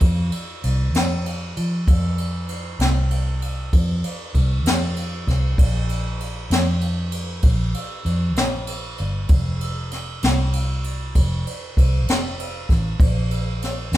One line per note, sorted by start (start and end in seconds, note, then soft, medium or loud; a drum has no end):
0.01 0.30 F2 medium
0.01 kick medium
0.01 ride medium
0.32 ride medium
0.63 0.94 C2 medium
0.63 ride medium
0.94 1.52 F2 loud
0.94 snare loud
0.94 ride medium
1.26 ride medium
1.57 1.85 F3 medium
1.57 ride medium
1.87 2.76 F2 medium
1.87 kick loud
1.87 ride medium
2.18 ride medium
2.49 ride medium
2.79 3.69 C2 loud
2.79 snare loud
2.79 ride medium
3.11 ride medium
3.42 ride medium
3.73 4.02 F2 medium
3.73 kick medium
3.73 ride medium
4.04 ride medium
4.34 4.65 C2 medium
4.34 kick medium
4.34 ride medium
4.65 5.23 F2 loud
4.65 snare loud
4.65 ride medium
4.96 ride medium
5.27 5.56 C2 medium
5.27 kick medium
5.27 snare soft
5.27 ride medium
5.58 6.47 A#1 medium
5.58 kick loud
5.58 ride medium
5.89 ride medium
6.20 ride medium
6.50 7.40 F2 loud
6.50 snare loud
6.50 ride medium
6.81 ride medium
7.12 ride medium
7.42 7.72 A#1 medium
7.42 kick medium
7.42 ride medium
7.74 ride medium
8.05 8.37 F2 medium
8.05 ride medium
8.36 8.95 A#1 loud
8.36 snare loud
8.36 ride medium
8.67 ride medium
8.98 9.28 G1 medium
8.98 ride medium
9.29 10.19 F1 medium
9.29 kick loud
9.29 ride medium
9.61 ride medium
9.91 snare soft
9.91 ride medium
10.23 11.11 C2 loud
10.23 snare loud
10.23 ride medium
10.53 ride medium
10.84 ride medium
11.15 11.44 F1 medium
11.15 kick medium
11.15 ride medium
11.47 ride medium
11.77 12.08 C2 medium
11.77 kick medium
11.77 ride medium
12.08 12.66 F1 loud
12.08 snare loud
12.08 ride medium
12.39 ride medium
12.69 12.98 A1 medium
12.69 kick medium
12.69 snare soft
12.69 ride medium
13.00 13.89 A#1 medium
13.00 kick loud
13.00 ride medium
13.31 ride medium
13.62 snare soft
13.62 ride medium
13.92 13.97 F2 medium
13.92 snare loud
13.92 ride medium